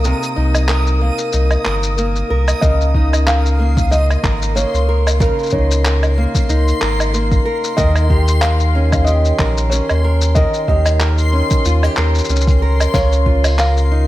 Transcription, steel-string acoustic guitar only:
Already playing: A#3 D#4
0.05 C3 A#4
0.36 D#4
0.69 A#4
1.01 A#3
1.33 D#4
1.65 A#4
1.98 A#3
2.30 A#4
2.62 C#3 A#4
2.96 D#4
3.27 A#4
3.59 A#3
3.91 D#4
4.24 A#4
4.55 A#3
4.89 A#4
5.20 C#3 A#4
5.53 D#4
5.86 A#4
6.18 A#3
6.49 D#4
6.81 A#4
7.14 A#3
7.45 A#4
7.77 D#3 A#4
8.10 G4
8.42 A#4
8.75 C#4
9.08 G4
9.40 A#4
9.73 C#4
10.04 A#4
10.36 D#3 A#4
10.69 G4
11.01 A#4
11.33 C#4
11.66 F4
11.84 G4
11.98 A#4
12.30 C#4
12.62 A#4
12.94 C#3 A#4
13.26 F4
13.59 A#4
13.91 D#4

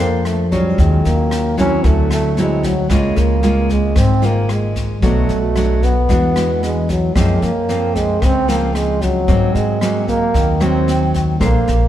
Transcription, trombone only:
0.00 A#3
0.26 A3
0.54 G3
0.81 G#3
1.05 A#3
1.59 C#4
1.86 A3
2.13 A3
2.40 G#3
2.65 F#3
2.91 G#3
3.18 A#3
3.72 G#3
3.98 C4
4.25 A#3
4.52 G#3
5.04 A3
5.84 B3
6.64 G#3
6.91 F#3
7.16 G#3
7.43 A#3
7.96 G#3
8.24 C4
8.49 A#3
8.76 G#3
9.02 F#3
9.55 G#3
10.09 A#3
10.62 C4
11.43 A#3

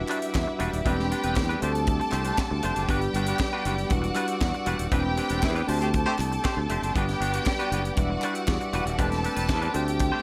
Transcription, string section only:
Already playing: E4 E5
0.85 G4 G5
1.61 A4 A5
2.89 G4 G5
3.90 F#4 F#5
4.91 G4 G5
5.68 A4 A5
6.95 G4 G5
7.97 F#4 F#5
8.98 A4 A5
9.73 G4 G5

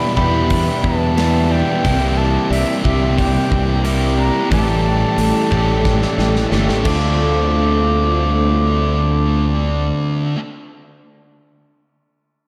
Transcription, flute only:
Already playing: B5
0.16 B5
0.82 A5
1.52 G5
2.17 A5
2.51 E5
2.84 E5
3.18 G5
4.19 A#5
4.52 A5
6.85 D6

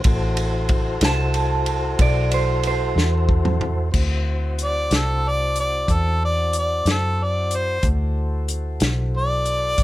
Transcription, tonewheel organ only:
0.05 E4 F#4 A4 C5
3.91 C4 E4 F#4 C5
7.85 E4 F#4 A4 C5

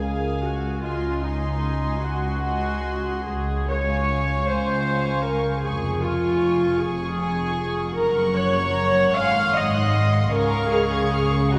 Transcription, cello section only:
Already playing: C#2
0.82 C#2
2.01 C#2
3.28 C#2
4.48 C#2
5.63 F2
6.81 F2
7.97 F#2
9.15 G#2
10.33 C#3

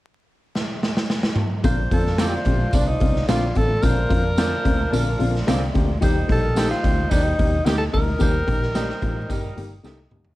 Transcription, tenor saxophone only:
1.93 A4
2.28 G4
2.35 F4
2.76 D4
2.88 D#4
3.28 F4
3.57 A4
3.83 A#4
6.32 A4
6.71 F4
7.11 D4
7.24 D#4
7.65 G4
7.78 A4
7.94 A#4

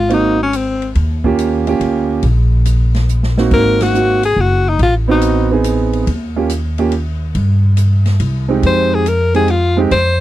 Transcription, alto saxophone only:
Already playing: F4
0.14 D#4
0.43 C#4
0.56 C4
3.53 A#4
3.83 F#4
4.25 G#4
4.40 F#4
4.69 D#4
4.83 F4
5.11 D#4
8.67 C5
8.95 G#4
9.08 A#4
9.36 G#4
9.50 F4
9.92 C5

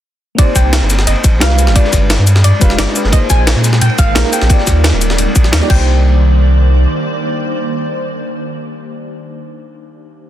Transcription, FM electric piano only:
0.35 A#3 C4 D#4
0.40 G4 C5
1.39 G#3 D4 F4 G4 B4
1.72 G#3 D4 F4
1.77 G4 B4
2.60 G#3 D4 F4 G4 F5
2.94 G#3 D4 F4 G4 B4
3.09 A#3 D#4 F4
3.14 G#4 C5
4.14 A#3 D#4 F4 G#4 A#4
4.46 A#3 D#4 F4
4.52 G4 D5
5.59 A#3 D#4 F4 G4 D5
5.65 A#3 D4
5.70 D#4 G4
5.75 C5

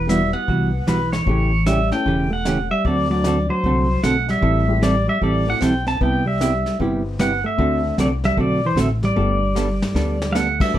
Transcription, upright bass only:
Already playing: E1
0.48 C2
0.87 B1
1.27 A1
2.06 E1
2.85 D2
3.64 C2
4.03 B1
4.42 A1
5.22 A1
5.61 B1
6.01 C2
6.80 G1
7.58 D2
7.98 C2
8.37 B1
8.76 A1
9.16 G1
9.95 D2
10.74 G1

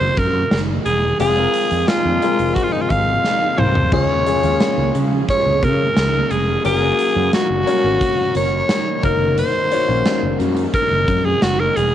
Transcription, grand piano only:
Already playing: A#3 D#4 F#4 A#4
1.20 G#3 C4 F4 G#4
1.37 G#3 C4 F4 A#4
2.22 G#3 C4 F4 A#4
3.92 C#3 G#3 C#4 F4 G#4
4.26 G#3 C#4 F4 G#4
4.43 G#3 C#4 F4 G#4
6.64 A#3 C#4 F#4 A#4
6.81 A#3 C#4 F#4 A#4
7.66 A#3 C#4 F#4 C#5
9.03 A#3 D#4 F#4 A#4
9.71 A#3 D#4 F#4 C#5
9.88 A#3 C#4 D#4 F#4

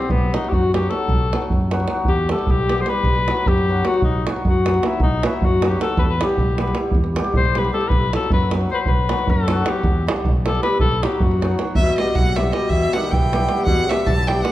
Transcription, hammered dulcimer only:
Already playing: G3
0.34 F#3 B3 D#4 F#4
0.73 F#3 B3 D#4 F#4
0.91 F#3 B3 D#4 F#4
1.33 F#3 B3 D#4 F#4
1.72 F#3 B3 D#4 F#4
1.88 F#3 B3 D#4 F#4
2.31 G3 B3 E4 G4
2.69 G3 B3 E4 G4
2.89 G3 B3 E4 G4
3.29 F#3 B3 D#4 F#4
3.69 F#3 B3 D#4 F#4
3.86 F#3 B3 D#4 F#4
4.26 F#3 B3 D#4 F#4
4.65 F#3 B3 D#4 F#4
4.82 F#3 B3 D#4 F#4
5.24 F#3 B3 D#4 F#4
5.63 F#3 B3 D#4 F#4
5.79 F#3 B3 D#4 F#4
6.21 G3 B3 E4 G4
6.59 G3 B3 E4 G4
6.76 G3 B3 E4 G4
7.17 G3 B3 E4 G4
7.57 G3 B3 E4 G4
7.73 G3 B3 E4 G4
8.16 F#3 B3 D#4 F#4
8.52 F#3 B3 D#4 F#4
8.70 F#3 B3 D#4 F#4
9.11 F#3 B3 D#4 F#4
9.50 F#3 B3 D#4 F#4
9.66 F#3 B3 D#4 F#4
10.07 G3 B3 E4 G4
10.46 G3 B3 E4 G4
10.63 G3 B3 E4 G4
11.02 F#3 B3 D#4 F#4
11.41 F#3 B3 D#4 F#4
11.58 F#3 B3 D#4 F#4
11.98 G3 B3 E4 G4
12.37 G3 B3 E4 G4
12.54 G3 B3 E4 G4
12.95 G3 B3 E4 G4
13.32 G3 B3 E4 G4
13.49 G3 B3 E4 G4
13.90 G3 B3 E4 G4
14.29 G3 B3 E4 G4
14.46 G3 B3 E4 G4

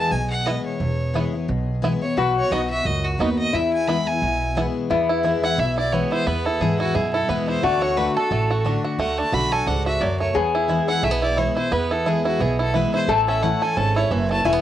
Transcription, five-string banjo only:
0.47 B3 E4
1.15 B3 E4
1.84 B3 E4
2.52 B3 D#4 F#4
3.20 B3 D#4 F#4
3.89 B3 E4
4.57 B3 E4
4.90 B3
5.09 E4
5.24 E4
5.43 E4
5.59 E4
5.78 E4
5.93 B3
6.12 E4
6.27 B3
6.46 E4
6.61 E4
6.80 E4
6.95 E4
7.14 E4
7.29 B3
7.48 E4
7.63 A3
7.82 F#4
7.97 D4
8.17 A4
8.32 A3
8.50 F#4
8.66 D4
8.84 F#4
8.99 A3
9.19 D4
9.33 F#4
9.52 A4
9.67 D4
9.86 F#4
10.02 F#3
10.20 A3
10.36 B3
10.55 E4
10.70 E4
10.89 E4
11.04 A3
11.11 B3
11.22 E4
11.38 E4
11.57 E4
11.72 B3
11.91 E4
12.06 E4
12.25 E4
12.40 B3
12.59 E4
12.74 E4
12.94 E4
13.09 A3
13.28 C#4
13.43 E4
13.62 A4
13.77 C#4
13.96 E4
14.11 E3
14.31 A3
14.45 A3
14.53 B3

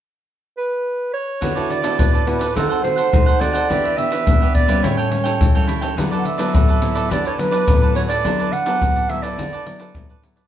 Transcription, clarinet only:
0.57 B4
1.14 C#5
1.70 D5
2.27 B4
2.55 A4
2.83 C5
3.41 D5
3.97 E5
4.54 D5
4.83 C#5
6.19 F#5
6.26 E5
7.12 D5
7.27 C#5
7.40 B4
7.96 C#5
8.09 D5
8.52 F#5
9.10 E5
9.22 D5

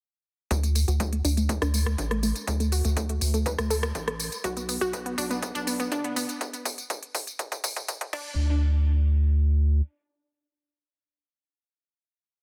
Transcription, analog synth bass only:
0.51 D2
0.88 D2
1.25 D2
1.62 D2
1.98 A1
2.48 D2
2.85 D2
3.21 D2
3.58 D2
3.95 A1
4.44 B1
4.81 B1
5.18 B1
5.55 B1
5.92 F#1
8.13 D2

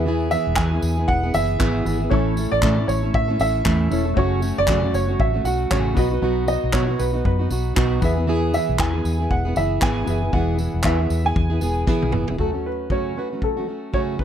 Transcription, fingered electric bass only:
Already playing: E2
0.47 E1
0.57 E2
0.83 E2
1.09 E1
1.34 F#1
1.60 G#1
1.85 G#1
2.12 A1
2.52 A1
2.63 A2
2.88 A1
3.14 A2
3.39 A1
3.66 E2
3.91 E1
4.17 F#1
4.58 F#1
4.68 F#2
4.93 F#1
5.20 A1
5.44 B1
5.71 A1
5.97 B1
6.22 B1
6.64 B1
6.74 B2
7.00 B1
7.25 F#2
7.51 B1
7.77 B1
8.02 E2
8.69 B1
8.80 E2
9.05 E2
9.31 E1
9.56 F#1
9.82 G#1
10.07 F#1
10.33 E1
10.74 E1
10.84 E2
11.10 E2
11.36 E2
11.62 E1
12.03 B1
12.13 F#1
12.29 E1

